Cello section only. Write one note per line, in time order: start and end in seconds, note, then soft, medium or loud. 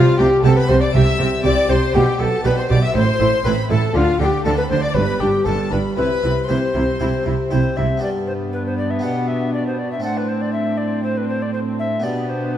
0.19 0.27 C3 medium
0.44 0.52 C3 medium
0.69 0.77 C3 medium
0.95 1.03 C3 medium
1.19 1.27 C3 medium
1.44 1.52 C3 medium
1.69 1.77 C3 medium
1.94 2.02 B2 medium
2.20 2.28 B2 medium
2.45 2.53 B2 medium
2.70 2.78 B2 medium
2.95 3.03 A2 medium
3.20 3.28 A2 medium
3.45 3.53 A2 medium
3.70 3.78 A2 medium
3.95 4.03 D3 medium
4.20 4.28 D3 medium
4.45 4.53 D3 medium
4.71 4.79 D3 medium
4.97 5.05 G2 medium
5.22 5.30 G2 medium
5.47 5.55 G2 medium
5.72 5.80 G2 medium
5.98 6.06 C3 medium
6.24 6.32 C3 medium
6.50 6.58 C3 medium
6.75 6.83 C3 medium
7.01 7.09 C3 medium
7.26 7.34 C3 medium
7.52 7.60 C3 medium
7.77 7.85 C3 medium
8.03 9.00 G2 soft
9.04 10.05 B2 medium
10.05 12.01 A2 soft
12.05 12.58 B2 soft